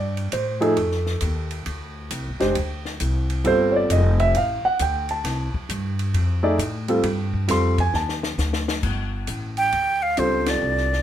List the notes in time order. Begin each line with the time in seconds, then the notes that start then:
Already playing: G2 D5
0.17 ride
0.32 A2 C5, hi-hat pedal, ride
0.60 F3 A3 D#4 G#4 A4, ride
0.76 F2, ride
0.92 snare
1.06 snare
1.21 D#2, hi-hat pedal, ride
1.51 ride
1.66 D2, ride
2.11 C2, hi-hat pedal, ride
2.26 G1
2.40 F1 G#3 D4 G4 C5, snare, ride
2.55 D2, ride
2.85 snare
3.00 C2, hi-hat pedal, ride
3.30 ride
3.44 G1 G3 C4 F4 A4 C5, ride
3.72 C#5
3.76 D5
3.90 F1 D#5, hi-hat pedal, ride
4.20 E5, ride
4.34 A1 F5, ride
4.64 F#5, muted upright bass stroke
4.79 D2 G5, hi-hat pedal, ride
5.09 A5, ride
5.24 C2, snare, ride
5.54 muted upright bass stroke, kick
5.69 G2, hi-hat pedal, ride
5.99 ride
6.14 F2, ride
6.43 A3 D#4 G#4 D5
6.58 A2, hi-hat pedal, ride
6.88 G3 C4 F4 A4, ride
7.03 G2, ride
7.34 kick
7.48 F2 G3 C4 F4 A4 C6, snare, hi-hat pedal, ride
7.78 G#5, kick, ride
7.94 D#2 A5, snare
8.09 snare
8.23 snare
8.38 D2, snare, hi-hat pedal
8.53 snare
8.68 snare
8.83 G1, kick, crash
9.27 A1, hi-hat pedal, ride
9.57 G5, ride
9.72 D2, ride
10.03 F5
10.17 C#2 G3 C4 D4 F4 A4 C5, hi-hat pedal, ride
10.46 D5, snare, ride
10.62 C2
10.77 snare
10.93 snare